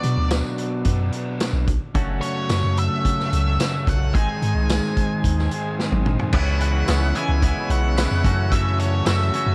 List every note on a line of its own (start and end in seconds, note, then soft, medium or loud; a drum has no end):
0.00 1.66 B2 medium
0.00 0.17 B2 loud
0.00 1.67 F#3 loud
0.00 0.84 B3 medium
0.00 1.67 B3 medium
0.00 0.86 D4 medium
0.00 1.68 D4 loud
0.00 0.88 F#4 medium
0.00 1.68 F#4 loud
0.00 0.28 D5 medium
0.00 closed hi-hat medium
0.17 0.43 D2 medium
0.31 snare loud
0.31 closed hi-hat loud
0.31 tambourine loud
0.58 closed hi-hat medium
0.85 1.11 F#2 loud
0.85 1.12 B3 medium
0.85 1.13 D4 medium
0.85 1.11 F#4 medium
0.85 kick medium
0.85 closed hi-hat medium
1.12 1.68 B3 medium
1.12 1.67 D4 medium
1.12 1.67 F#4 medium
1.12 closed hi-hat medium
1.40 snare loud
1.40 closed hi-hat medium
1.40 tambourine loud
1.53 1.79 B1 medium
1.68 kick medium
1.68 closed hi-hat medium
1.94 2.20 F#1 loud
1.94 4.13 F#2 medium
1.94 4.13 C#3 loud
1.94 4.14 F#3 medium
1.94 3.31 A3 medium
1.94 4.14 A3 loud
1.94 3.32 C#4 medium
1.94 4.14 C#4 loud
1.94 4.14 F#4 medium
1.94 3.30 F#4 loud
1.94 4.13 A4 medium
1.94 4.12 F#5 medium
1.94 4.12 C#6 medium
1.94 kick loud
1.94 closed hi-hat medium
2.21 2.78 C#5 medium
2.21 closed hi-hat medium
2.49 2.63 F#2 medium
2.49 snare loud
2.49 closed hi-hat medium
2.49 tambourine loud
2.64 2.89 F#2 loud
2.77 3.91 E5 medium
2.77 closed hi-hat medium
3.05 kick medium
3.05 closed hi-hat medium
3.20 snare soft
3.31 3.58 C#2 medium
3.31 3.58 A3 medium
3.31 3.59 C#4 medium
3.31 3.58 F#4 medium
3.31 closed hi-hat medium
3.59 4.13 A3 medium
3.59 4.14 C#4 medium
3.59 4.14 F#4 medium
3.59 snare loud
3.59 closed hi-hat medium
3.59 tambourine loud
3.87 4.12 B1 medium
3.87 4.14 F#5 loud
3.87 kick medium
3.87 closed hi-hat medium
4.14 4.27 G#1 loud
4.14 6.32 G#2 medium
4.14 5.49 D#3 medium
4.14 6.32 D#3 medium
4.14 5.50 G#3 medium
4.14 6.32 G#3 medium
4.14 5.51 C4 medium
4.14 6.33 C4 medium
4.14 6.33 D#4 loud
4.14 6.31 G#4 medium
4.14 5.49 G#4 medium
4.14 6.33 G#4 loud
4.14 6.31 D#5 medium
4.14 5.75 G#5 loud
4.14 6.31 C6 medium
4.14 kick loud
4.14 closed hi-hat medium
4.42 4.55 G#2 loud
4.42 closed hi-hat medium
4.55 4.81 C2 medium
4.69 snare loud
4.69 closed hi-hat loud
4.69 tambourine loud
4.97 kick medium
4.97 closed hi-hat medium
5.24 5.49 D#2 loud
5.24 kick medium
5.24 closed hi-hat medium
5.39 snare soft
5.50 5.76 D#3 medium
5.50 5.77 G#3 medium
5.50 5.78 C4 medium
5.50 5.77 G#4 medium
5.50 closed hi-hat medium
5.78 6.31 D#3 medium
5.78 6.32 G#3 medium
5.78 6.32 C4 medium
5.78 6.33 G#4 medium
5.78 snare medium
5.92 6.17 G#1 medium
5.92 high tom medium
6.06 mid tom medium
6.19 floor tom medium
6.32 6.84 C#2 loud
6.32 6.87 C#3 medium
6.32 6.87 E3 medium
6.32 6.88 E3 loud
6.32 6.87 G#3 loud
6.32 6.88 G#3 medium
6.32 6.89 B3 medium
6.32 6.88 C#4 loud
6.32 8.23 E4 medium
6.32 6.90 E4 loud
6.32 8.23 C#5 medium
6.32 6.61 F#5 loud
6.32 8.23 B5 medium
6.32 6.60 C#6 medium
6.32 kick loud
6.32 crash loud
6.61 7.16 F#5 loud
6.61 7.13 C#6 medium
6.61 closed hi-hat medium
6.87 7.13 C#2 loud
6.87 7.15 C#3 medium
6.87 7.15 E3 medium
6.87 7.16 E3 medium
6.87 7.14 G#3 medium
6.87 7.16 G#3 medium
6.87 7.16 B3 medium
6.87 7.16 C#4 medium
6.87 7.18 E4 medium
6.87 snare loud
6.87 closed hi-hat loud
6.87 tambourine loud
7.15 7.41 C#3 medium
7.15 7.41 E3 medium
7.15 7.42 E3 medium
7.15 7.42 G#3 medium
7.15 7.43 B3 medium
7.15 7.42 C#4 loud
7.15 7.43 E4 medium
7.15 7.71 G#5 loud
7.15 7.67 E6 loud
7.15 closed hi-hat medium
7.29 7.54 C#2 medium
7.42 7.96 C#3 medium
7.42 7.96 E3 loud
7.42 7.96 E3 medium
7.42 7.97 G#3 medium
7.42 7.96 G#3 loud
7.42 7.97 B3 loud
7.42 7.97 C#4 loud
7.42 7.97 E4 loud
7.42 kick medium
7.42 closed hi-hat loud
7.70 8.07 B1 loud
7.70 8.55 F#5 loud
7.70 8.49 C#6 medium
7.70 closed hi-hat medium
7.97 8.23 C#3 medium
7.97 8.23 E3 medium
7.97 8.23 G#3 medium
7.97 8.23 G#3 loud
7.97 8.23 B3 medium
7.97 8.24 C#4 loud
7.97 8.24 E4 medium
7.97 snare loud
7.97 closed hi-hat loud
7.97 tambourine loud
8.11 8.24 F2 medium
8.24 8.51 F#2 medium
8.24 9.02 F#2 medium
8.24 8.52 C#3 loud
8.24 8.52 E3 loud
8.24 8.51 F#3 medium
8.24 8.52 A3 loud
8.24 8.51 A3 loud
8.24 8.53 C#4 loud
8.24 8.52 C#4 loud
8.24 9.55 F#4 medium
8.24 8.54 F#4 loud
8.24 9.55 E5 medium
8.24 9.55 A5 medium
8.24 kick medium
8.24 closed hi-hat medium
8.52 9.05 F#2 medium
8.52 9.06 C#3 loud
8.52 9.06 E3 loud
8.52 9.06 F#3 loud
8.52 9.06 A3 loud
8.52 9.07 C#4 loud
8.52 9.06 C#4 loud
8.52 9.08 F#4 loud
8.52 8.79 E5 loud
8.52 8.78 C#6 medium
8.52 kick loud
8.52 closed hi-hat loud
8.79 9.06 C#5 medium
8.79 9.06 A5 medium
8.79 closed hi-hat medium
9.06 9.31 F#2 loud
9.06 9.32 F#2 medium
9.06 9.33 C#3 medium
9.06 9.33 E3 loud
9.06 9.32 F#3 medium
9.06 9.32 A3 medium
9.06 9.34 A3 medium
9.06 9.34 C#4 medium
9.06 9.33 C#4 medium
9.06 9.35 F#4 loud
9.06 9.55 E5 medium
9.06 9.55 C#6 medium
9.06 snare loud
9.06 closed hi-hat loud
9.06 tambourine loud
9.33 9.55 F#2 medium
9.33 9.55 C#3 medium
9.33 9.55 E3 medium
9.33 9.55 F#3 medium
9.33 9.55 A3 medium
9.33 9.55 C#4 loud
9.33 9.55 C#4 medium
9.33 9.55 F#4 loud
9.33 closed hi-hat medium
9.46 9.55 F#2 loud